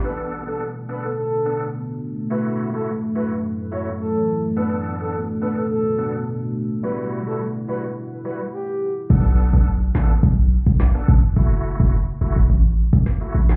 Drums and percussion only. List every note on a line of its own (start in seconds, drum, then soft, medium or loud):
9.10 kick loud
9.10 crash medium
9.53 kick loud
9.95 snare loud
9.95 clap medium
10.23 kick loud
10.67 kick medium
10.80 cross-stick medium
10.80 snare loud
10.80 clap medium
11.08 kick loud
11.37 kick loud
11.80 kick loud
12.36 kick medium
12.93 kick loud
13.06 cross-stick medium
13.06 snare medium
13.49 snare loud
13.49 clap medium